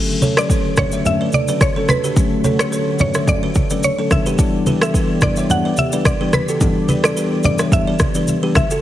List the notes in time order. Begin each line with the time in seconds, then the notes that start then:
Already playing: D3 F#3 A3 C#4 F#4 A4
0.22 A4 C#5, high conga, shaker
0.37 D3 F#3 A3 C#4 G4 B4 D5, cross-stick, shaker
0.50 A4 C#5, kick, shaker
0.77 D3 F#3 A3 C#4 B4 C#5 D5, kick, cross-stick, high conga, low conga, shaker
0.92 C#5 E5, shaker
1.05 D3 F#3 A3 C#4 E5, low conga, shaker
1.21 B4 D5
1.32 D5, high conga, shaker
1.48 D3 F#3 A3 C#4 B4 D5, shaker
1.61 C#5, kick, cross-stick, high conga, shaker
1.76 D3 F#3 A3 C#4 A4 C#5
1.89 B4, cross-stick, high conga, shaker
2.04 G4 B4, shaker
2.16 D3 F#3 A3 C#4, kick, shaker
2.44 A4 C#5, high conga, shaker
2.59 D3 G4 B4 C#5, cross-stick, shaker
2.72 A4 C#5, shaker
2.99 D3 F#3 A3 C#4 B4 C#5 D5, high conga, low conga, shaker
3.14 C#5 E5, cross-stick, shaker
3.27 D3 F#3 A3 C#4 D5, kick, low conga, shaker
3.43 B4 D5
3.55 kick, high conga, shaker
3.70 D3 F#3 A3 C#4 B4 D5, shaker
3.83 C#5, high conga, shaker
3.98 D3 F#3 A3 C#4 A4 C#5
4.11 E3 G3 B3 D4 G4 D5 E5, kick, cross-stick, high conga, shaker
4.26 G4 B4, shaker
4.38 E3 G3 B3 D4, kick, shaker
4.66 G4 B4, high conga, shaker
4.81 E3 G3 F#4 A4 E5, cross-stick, shaker
4.94 G4 B4, kick, shaker
5.21 E3 G3 D4 B4 D5, kick, cross-stick, high conga, low conga, shaker
5.36 C#5 E5, shaker
5.49 E3 G3 B3 D4 F#5, low conga, shaker
5.65 B4 D5
5.77 E5, high conga, shaker
5.92 E3 G3 B3 D4 B4 D5, shaker
6.05 D5, kick, cross-stick, high conga, shaker
6.20 E3 G3 B3 D4 G4 B4
6.33 B4, cross-stick, high conga, shaker
6.49 F#4 A4, shaker
6.60 E3 G3 B3 D4, kick, low conga, shaker
6.88 G4 B4, high conga, shaker
7.04 E3 G3 B3 D4 F#4 A4 D5, cross-stick, shaker
7.17 G4 B4, shaker
7.43 E3 G3 B3 D4 B4 D5, high conga, low conga, shaker
7.59 C#5 E5, cross-stick, shaker
7.72 E3 G3 B3 D4 E5, kick, low conga, shaker
7.87 B4 D5
7.99 kick, cross-stick, high conga, shaker
8.15 E3 G3 B3 D4 B4 D5, shaker
8.27 high conga, shaker
8.42 E3 G3 B3 D4 G4 B4
8.55 E5, kick, cross-stick, high conga, shaker
8.71 F#4 A4, shaker